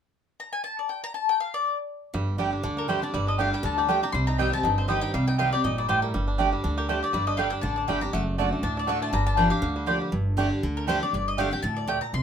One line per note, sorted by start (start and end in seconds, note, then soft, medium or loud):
0.40 0.52 A#5 medium
0.53 0.63 G#5 medium
0.64 0.78 A5 medium
0.79 0.90 D5 medium
0.89 1.03 G5 medium
1.04 1.14 A#5 loud
1.14 1.28 A5 medium
1.29 1.40 G5 medium
1.40 1.53 F5 medium
1.54 1.77 D5 medium
2.14 2.51 G1 medium
2.14 2.62 G2 medium
2.14 2.38 G3 medium
2.38 2.62 D3 medium
2.38 2.88 G3 medium
2.38 2.63 G3 medium
2.38 2.49 A3 medium
2.38 2.63 D4 medium
2.38 2.49 G4 medium
2.38 2.64 G4 medium
2.38 2.49 D5 medium
2.38 2.49 G5 loud
2.53 2.62 D4 medium
2.63 3.01 D2 medium
2.63 2.87 D3 medium
2.63 2.76 D4 medium
2.77 3.01 D4 medium
2.77 2.89 A#4 medium
2.88 3.02 D3 medium
2.88 3.13 G3 medium
2.88 3.02 G3 medium
2.88 2.99 A3 medium
2.88 3.02 D4 medium
2.88 2.99 G4 medium
2.88 3.01 G4 medium
2.88 3.03 C5 medium
2.88 2.99 D5 medium
2.88 2.99 G5 medium
3.02 3.26 D4 medium
3.02 3.14 D4 soft
3.02 3.13 G4 soft
3.02 3.13 D5 medium
3.14 3.51 G1 medium
3.14 3.62 G2 medium
3.14 3.53 G3 medium
3.14 3.28 D5 medium
3.27 3.38 D4 medium
3.27 3.39 D#5 medium
3.38 3.62 D3 medium
3.38 3.63 G3 medium
3.38 3.49 A3 medium
3.38 3.63 D4 medium
3.38 3.49 G4 medium
3.38 3.64 G4 medium
3.38 3.49 D5 medium
3.38 3.53 F5 medium
3.38 3.49 G5 medium
3.53 4.14 G3 medium
3.53 3.64 G5 medium
3.63 4.01 D2 medium
3.63 3.87 D3 medium
3.63 3.88 D4 medium
3.63 3.78 A5 medium
3.78 4.03 G4 medium
3.78 3.89 D5 medium
3.88 4.02 D3 medium
3.88 4.02 G3 medium
3.88 3.99 A3 medium
3.88 4.14 D4 medium
3.88 4.03 D4 medium
3.88 3.99 G4 medium
3.88 4.01 G4 medium
3.88 3.99 D5 medium
3.88 3.99 G5 loud
3.88 4.03 G5 medium
4.03 4.15 D4 soft
4.03 4.13 G4 medium
4.03 5.43 G4 medium
4.03 4.12 A#5 medium
4.12 4.50 C2 medium
4.12 4.62 C3 medium
4.12 4.39 G3 medium
4.12 4.27 C6 loud
4.27 4.62 D#4 medium
4.27 4.38 A#5 medium
4.38 4.52 D#3 medium
4.38 4.88 G3 medium
4.38 4.53 G3 medium
4.38 4.49 C4 medium
4.38 4.53 C4 medium
4.38 4.49 G4 medium
4.38 4.52 G4 medium
4.38 4.49 D#5 medium
4.38 4.49 G5 medium
4.38 4.53 G5 medium
4.52 4.77 C4 medium
4.52 4.65 C4 soft
4.52 4.64 G4 medium
4.52 4.63 A5 loud
4.63 5.00 G1 medium
4.63 5.12 G2 medium
4.63 5.00 D#4 medium
4.63 4.77 G5 medium
4.78 5.12 C4 medium
4.78 4.88 C5 medium
4.88 5.12 D#3 medium
4.88 5.14 G3 medium
4.88 5.13 G3 medium
4.88 4.99 C4 medium
4.88 5.13 C4 medium
4.88 4.99 G4 medium
4.88 5.13 G4 medium
4.88 5.02 D#5 medium
4.88 4.99 D#5 medium
4.88 4.99 G5 loud
5.01 5.27 D#4 medium
5.01 5.13 G5 loud
5.14 5.51 C2 medium
5.14 5.62 C3 medium
5.14 5.39 G3 medium
5.14 5.27 F5 medium
5.28 5.62 D#4 medium
5.28 5.38 G5 medium
5.38 5.52 D#3 medium
5.38 5.78 G3 medium
5.38 5.52 G3 medium
5.38 5.48 C4 medium
5.38 5.53 C4 medium
5.38 5.49 G4 medium
5.38 5.51 G4 medium
5.38 5.49 D#5 medium
5.38 5.52 F5 medium
5.38 5.49 G5 medium
5.52 5.65 C4 soft
5.52 5.63 G4 medium
5.52 5.89 G4 medium
5.52 5.63 D5 medium
5.64 6.01 G1 medium
5.64 5.88 A#2 medium
5.64 6.00 D#4 medium
5.64 5.77 D#5 medium
5.78 6.03 G3 medium
5.78 5.88 D5 medium
5.88 6.13 A2 medium
5.88 5.99 C4 medium
5.88 5.99 G4 medium
5.88 6.14 G4 medium
5.88 6.02 C5 medium
5.88 5.99 D#5 medium
5.88 5.99 G5 medium
6.02 6.13 G3 medium
6.02 6.13 A#4 medium
6.14 6.51 G1 medium
6.14 6.61 G2 medium
6.14 6.50 G3 medium
6.28 6.39 D4 medium
6.38 6.62 D3 medium
6.38 6.63 G3 medium
6.38 6.48 A3 medium
6.38 6.63 D4 medium
6.38 6.49 G4 loud
6.38 6.63 G4 medium
6.38 6.49 D5 medium
6.38 6.49 G5 medium
6.53 6.86 G3 medium
6.64 7.01 D2 medium
6.64 6.88 D3 medium
6.64 6.89 D4 medium
6.78 7.01 G4 medium
6.78 6.88 A#4 medium
6.89 7.13 D3 medium
6.89 7.13 G3 medium
6.89 6.99 A3 medium
6.89 7.28 D4 medium
6.89 7.13 D4 medium
6.89 6.99 G4 medium
6.89 7.13 G4 medium
6.89 7.02 C5 medium
6.89 6.99 D5 medium
6.89 6.99 G5 loud
7.03 7.36 G4 medium
7.03 7.13 D5 medium
7.13 7.50 G1 medium
7.13 7.61 G2 medium
7.13 7.37 G3 medium
7.13 7.27 D5 medium
7.27 7.53 D4 medium
7.27 7.38 D#5 medium
7.37 7.62 D3 medium
7.37 7.62 G3 medium
7.37 7.75 G3 medium
7.37 7.48 A3 medium
7.37 7.63 D4 medium
7.37 7.49 G4 medium
7.37 7.63 G4 medium
7.37 7.49 D5 loud
7.37 7.50 F5 medium
7.37 7.49 G5 loud
7.50 7.64 D4 medium
7.50 7.61 G5 medium
7.61 7.84 A1 medium
7.61 7.87 D3 medium
7.61 7.78 D4 medium
7.61 7.76 A5 medium
7.76 8.03 D4 medium
7.76 7.87 D5 medium
7.88 8.10 G1 medium
7.88 8.01 D3 medium
7.88 8.02 G3 medium
7.88 8.13 G3 medium
7.88 7.98 A3 medium
7.88 8.02 D4 medium
7.88 7.98 G4 medium
7.88 8.01 G4 medium
7.88 7.98 D5 medium
7.88 8.01 G5 medium
7.88 7.99 G5 medium
8.01 8.53 D4 medium
8.01 8.14 D4 soft
8.01 8.13 G4 medium
8.01 8.13 A#5 medium
8.13 8.50 F#1 medium
8.13 8.62 F#2 medium
8.13 8.37 A3 medium
8.13 8.22 F#5 medium
8.38 8.62 D3 medium
8.38 8.48 A3 medium
8.38 8.74 A3 medium
8.38 8.63 A3 medium
8.38 8.63 D4 medium
8.38 8.48 F#4 medium
8.38 8.64 F#4 medium
8.38 8.49 D5 loud
8.38 8.49 A5 loud
8.53 8.64 D4 medium
8.62 9.00 D2 medium
8.62 9.11 A2 medium
8.62 8.77 D4 medium
8.62 8.76 A5 medium
8.77 9.02 D4 medium
8.77 8.89 D5 medium
8.87 9.12 D3 medium
8.87 8.98 A3 medium
8.87 9.12 A3 medium
8.87 9.13 A3 medium
8.87 9.12 D4 medium
8.87 8.98 F#4 medium
8.87 9.13 F#4 medium
8.87 8.98 D5 medium
8.87 9.02 F#5 medium
8.87 8.98 A5 medium
9.02 9.26 D4 medium
9.02 9.13 A5 medium
9.12 9.50 G1 medium
9.12 9.61 G2 medium
9.12 9.37 G3 medium
9.12 9.26 A#5 loud
9.27 9.61 D4 medium
9.27 9.37 A5 medium
9.36 9.51 F3 medium
9.36 9.74 G3 medium
9.36 9.47 A#3 medium
9.36 9.51 A#3 medium
9.36 9.52 D4 medium
9.36 9.48 F4 medium
9.36 9.50 G4 medium
9.36 9.48 D5 medium
9.36 9.50 G5 medium
9.36 9.48 G5 loud
9.50 9.63 D4 soft
9.50 9.62 G4 medium
9.50 9.86 G4 medium
9.50 9.85 F5 medium
9.62 9.99 D2 medium
9.62 10.10 D3 medium
9.62 9.99 D4 medium
9.76 10.00 G3 medium
9.86 10.11 F3 medium
9.86 9.97 A#3 medium
9.86 10.12 A#3 medium
9.86 10.12 D4 medium
9.86 9.98 F4 medium
9.86 10.13 G4 medium
9.86 10.12 G4 medium
9.86 9.98 D5 medium
9.86 9.98 G5 loud
10.02 10.13 G3 medium
10.12 10.49 G1 medium
10.12 10.60 G2 medium
10.37 10.61 D3 medium
10.37 10.62 G3 medium
10.37 10.48 A3 medium
10.37 10.62 D4 medium
10.37 10.48 G4 medium
10.37 10.62 G4 medium
10.37 10.48 D5 loud
10.37 10.48 G5 loud
10.63 11.00 D2 medium
10.63 10.86 D3 medium
10.77 10.88 A#4 medium
10.87 11.01 D3 medium
10.87 11.01 G3 medium
10.87 10.98 A3 medium
10.87 11.02 D4 medium
10.87 10.98 G4 loud
10.87 11.01 G4 loud
10.87 11.02 C5 medium
10.87 10.98 D5 medium
10.87 10.98 G5 medium
11.03 11.14 D4 soft
11.03 11.13 G4 medium
11.03 11.13 D5 medium
11.13 11.50 G1 medium
11.13 11.61 G2 medium
11.13 11.27 D5 medium
11.28 11.38 D#5 medium
11.37 11.51 D3 medium
11.37 11.52 G3 medium
11.37 11.48 A3 medium
11.37 11.52 D4 medium
11.37 11.48 G4 loud
11.37 11.50 G4 medium
11.37 11.48 D5 loud
11.37 11.52 F5 medium
11.37 11.48 G5 loud
11.51 11.63 D4 soft
11.51 11.62 G4 medium
11.51 11.62 G5 medium
11.62 12.00 D2 medium
11.62 11.87 A2 medium
11.62 11.76 A5 medium
11.77 11.88 D5 medium
11.87 12.12 A#2 medium
11.87 11.98 A3 medium
11.87 11.98 G4 medium
11.87 11.99 D5 medium
11.87 12.01 G5 medium
11.87 11.99 G5 medium
12.01 12.12 A#5 medium
12.13 12.23 C2 medium
12.13 12.23 C3 medium
12.13 12.23 C6 loud